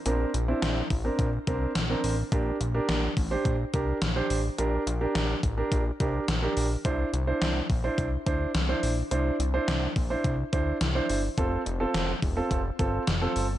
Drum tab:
HH |xxxoxxxo|xxxoxxxo|xxxxxxxo|xxxoxxxo|
SD |--o---o-|--o---o-|--o---o-|--o---o-|
BD |---ooo--|o--ooo--|---ooo--|o--ooo--|

HH |xxxoxxxo|xxxoxxxo|
SD |--o---o-|--o---o-|
BD |---ooo--|o--ooo--|